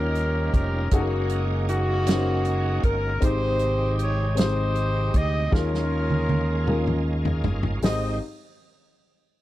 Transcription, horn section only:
0.00 0.88 C#4 medium
0.00 0.87 G4 medium
0.00 0.53 A#4 medium
0.54 0.89 A#4 medium
0.93 1.67 A#3 medium
0.93 1.68 D#4 medium
0.93 1.42 F#4 medium
1.68 2.79 A#3 medium
1.68 2.79 D#4 medium
1.68 2.80 F#4 medium
2.84 3.22 A#4 medium
3.24 4.34 D#4 medium
3.24 4.34 G4 medium
3.24 3.96 C5 medium
4.02 4.36 C#5 medium
4.38 5.49 D#4 medium
4.38 5.48 G4 medium
4.38 5.14 C5 medium
5.16 5.53 D#5 medium
5.54 7.03 C#4 medium
5.54 7.03 F4 medium
5.54 7.07 A#4 medium
7.84 8.19 D#5 medium

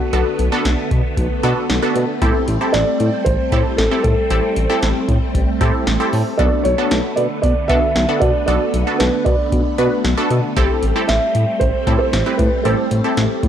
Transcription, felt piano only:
0.00 0.87 F#4 medium
2.72 3.27 D5 loud
3.25 3.79 C5 loud
3.77 4.01 A4 medium
4.03 5.04 A4 loud
6.38 6.63 D5 loud
6.64 7.18 C#5 loud
7.16 7.22 D5 loud
7.42 7.67 D5 loud
7.68 8.23 E5 loud
8.20 8.45 D5 loud
8.46 9.01 D5 loud
8.98 9.23 B4 medium
9.25 10.26 D5 medium
11.07 11.62 E5 loud
11.60 11.97 C5 loud
11.99 12.36 C5 loud
12.38 12.65 B4 loud
12.64 13.48 C5 medium

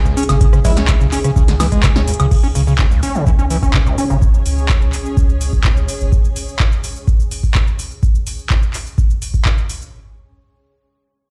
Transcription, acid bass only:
0.05 0.15 C#2 medium
0.17 0.24 C#4 medium
0.29 0.36 C#3 medium
0.41 0.47 C#3 medium
0.53 0.59 C#3 medium
0.65 0.71 E3 loud
0.77 0.86 C#4 medium
0.88 0.92 C#3 loud
1.01 1.07 C#3 medium
1.12 1.19 C#4 medium
1.24 1.31 C#3 medium
1.36 1.43 C#3 medium
1.48 1.55 D3 medium
1.60 1.67 E3 loud
1.72 1.82 G#3 medium
1.84 1.88 C#3 loud
1.96 2.02 C#4 medium
2.08 2.12 C#2 medium
2.20 2.26 C#3 medium
2.31 2.35 C#3 medium
2.44 2.47 C#4 medium
2.55 2.62 C#3 medium
2.67 2.74 C#3 medium
2.79 2.83 C#4 medium
2.91 3.01 C#2 medium
3.03 3.16 C#4 medium
3.15 3.25 C#3 loud
3.27 3.31 E3 loud
3.39 3.45 C#4 medium
3.50 3.57 E3 loud
3.63 3.72 C#4 medium
3.74 3.78 C#3 loud
3.86 3.96 C#2 medium
3.98 4.05 C#4 medium
4.10 4.17 C#3 medium

